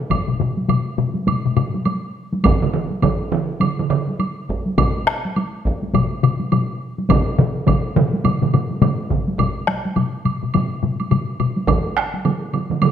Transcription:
0.10 taiko, taiko low-mid, taiko high, high woodblock
0.28 taiko low-mid
0.40 taiko low-mid
0.57 taiko high
0.68 taiko low-mid, taiko high, high woodblock
0.98 taiko low-mid
1.15 taiko high
1.27 taiko low-mid, taiko high, high woodblock
1.46 taiko low-mid
1.57 taiko low-mid, high woodblock
1.74 taiko high
1.85 taiko high, high woodblock
2.33 taiko high
2.44 taiko, taiko mid, taiko high, high woodblock
2.62 taiko mid
2.74 taiko mid
2.90 taiko high
3.02 taiko, taiko mid, taiko high, high woodblock
3.32 taiko mid
3.60 taiko mid, taiko high, high woodblock
3.79 taiko mid
3.90 taiko mid, high woodblock
4.08 taiko high
4.19 taiko high, high woodblock
4.49 taiko
4.66 taiko high
4.78 taiko, taiko low-mid, taiko high, high woodblock
5.07 taiko rim
5.25 taiko high
5.36 taiko high, high woodblock
5.65 taiko
5.82 taiko high
5.94 taiko, taiko low-mid, taiko high, high woodblock
6.23 taiko low-mid, high woodblock
6.40 taiko high
6.52 taiko low-mid, taiko high, high woodblock
6.98 taiko high
7.09 taiko, taiko low-mid, taiko mid, taiko high, high woodblock
7.39 taiko low-mid, taiko mid
7.67 taiko, taiko low-mid, taiko mid, taiko high, high woodblock
7.96 taiko low-mid, taiko mid, taiko high
8.13 taiko high
8.25 taiko low-mid, taiko mid, taiko high, high woodblock
8.42 taiko low-mid, taiko mid
8.54 taiko low-mid, taiko mid, high woodblock
8.71 taiko high
8.82 taiko low-mid, taiko mid, taiko high, high woodblock
9.10 taiko, taiko low-mid, taiko mid
9.28 taiko high
9.39 taiko, taiko low-mid, taiko high, high woodblock
9.67 taiko rim, taiko high
9.85 taiko high
9.96 taiko low-mid, taiko high, high woodblock
10.25 taiko low-mid, taiko high, high woodblock
10.43 taiko low-mid
10.54 taiko low-mid, taiko high, high woodblock
10.83 taiko low-mid, taiko high
11.00 taiko high, high woodblock
11.11 taiko low-mid, taiko high, high woodblock
11.40 taiko low-mid, high woodblock
11.56 taiko high
11.67 taiko, taiko mid, taiko high, high woodblock
11.97 taiko rim
12.14 taiko high
12.25 taiko mid, taiko high, high woodblock
12.53 taiko mid, taiko high, high woodblock
12.71 taiko mid, taiko high
12.82 taiko mid, taiko high, high woodblock

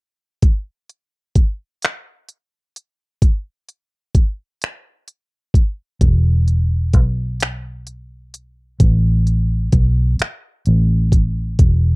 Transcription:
0.42 kick, closed hi-hat
0.90 closed hi-hat
1.35 kick, closed hi-hat
1.82 finger snap, closed hi-hat
2.29 closed hi-hat
2.76 closed hi-hat
3.22 kick, closed hi-hat
3.69 closed hi-hat
4.15 kick, closed hi-hat
4.62 finger snap, closed hi-hat
5.08 closed hi-hat
5.54 kick, closed hi-hat
6.01 E1, kick, closed hi-hat
6.48 closed hi-hat
6.93 B1, kick, closed hi-hat
7.40 finger snap, closed hi-hat
7.87 closed hi-hat
8.34 closed hi-hat
8.80 A1, kick, closed hi-hat
9.27 closed hi-hat
9.72 B1, kick, closed hi-hat
10.19 finger snap, muted fingered electric bass stroke, closed hi-hat
10.66 A1, closed hi-hat
11.12 kick, closed hi-hat
11.59 E1, kick, closed hi-hat

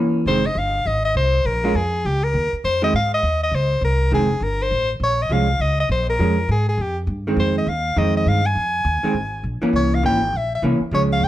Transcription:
Already playing: E3 A#3 C#4
0.26 F1 D#3 G#3 C4 C5
0.46 D#5
0.55 G1 F5
0.85 G#1 D#5
1.05 D#5
1.15 C2 C5
1.45 A#1 A#4
1.64 G#3 C#4 F4
1.74 F2 G#4
2.05 C#2 G4
2.24 A#4
2.34 D#2
2.52 muted upright bass stroke
2.64 F2 C5
2.82 D#3 G#3 C4 D#5
2.94 G#2 F5
3.14 D#5
3.23 D#2
3.43 D#5
3.52 C#2 C5
3.81 C2 A#4
4.11 F1 D#3 G#3 C4 G#4
4.40 G1 A#4
4.62 C5
4.71 A1
5.00 A#1 C#5
5.22 D#5
5.29 C2 F3 G#3 C#4 F5
5.59 C#2 D#5
5.80 D#5
5.89 A#1 C5
6.10 A#4
6.19 F2 F3 G#3 C#4
6.48 G#2 G#4
6.69 G#4
6.77 F2 G4
7.07 G2
7.27 D#3 G#3 C4
7.36 F2 C5
7.57 D#5
7.66 D#2 F5
7.96 F2 D#3 G#3 C4 D#5
8.17 D#5
8.26 G2 F5
8.46 G#5
8.55 F2
8.85 D#2
9.03 D#3 G#3 C4
9.14 G#1
9.43 A#1
9.62 E3 A#3 C#4, muted upright bass stroke
9.73 C2 C#5
9.95 F5
10.03 G#1 E3 A#3 C#4 G5
10.33 A#1 E5
10.55 E5
10.62 C2 E3 A#3 C#4
10.80 muted upright bass stroke
10.91 C#2 F3 G#3 C#4 C#5
11.13 F5
11.21 D#2 G5

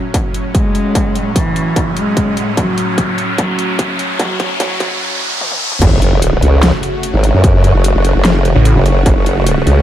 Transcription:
Already playing: A2 F#3 C#4, riser
0.14 kick, closed hi-hat
0.34 closed hi-hat
0.55 G#3, kick, closed hi-hat
0.75 closed hi-hat
0.95 kick, closed hi-hat
1.15 closed hi-hat
1.36 E3, kick, closed hi-hat
1.56 closed hi-hat
1.76 kick, closed hi-hat
1.97 G#3, closed hi-hat
2.17 kick, closed hi-hat
2.37 closed hi-hat
2.57 F#3, kick, closed hi-hat
2.78 closed hi-hat
2.98 kick, closed hi-hat
3.18 closed hi-hat
3.38 F#3, kick, closed hi-hat
3.59 closed hi-hat
3.79 kick, closed hi-hat
3.99 closed hi-hat
4.19 F#3, kick, closed hi-hat
4.40 kick, closed hi-hat
4.60 F#3, kick, closed hi-hat
4.80 kick, closed hi-hat
5.41 high tom
5.51 high tom
5.72 mid tom
5.82 F#1 C#3 A3 F#4, kick, closed hi-hat, crash, impact
6.02 closed hi-hat
6.22 closed hi-hat
6.42 C#2, closed hi-hat
6.63 snare, closed hi-hat
6.83 closed hi-hat
7.03 closed hi-hat
7.14 G#1
7.24 closed hi-hat
7.34 F#2
7.44 kick, closed hi-hat
7.64 closed hi-hat
7.74 F#1
7.84 closed hi-hat
7.95 F#1
8.05 closed hi-hat
8.15 F#1
8.25 snare, closed hi-hat
8.45 closed hi-hat
8.56 A1
8.65 closed hi-hat
8.76 F#1
8.86 closed hi-hat
9.06 F#1, kick, closed hi-hat
9.26 closed hi-hat
9.47 closed hi-hat
9.67 C#2, closed hi-hat

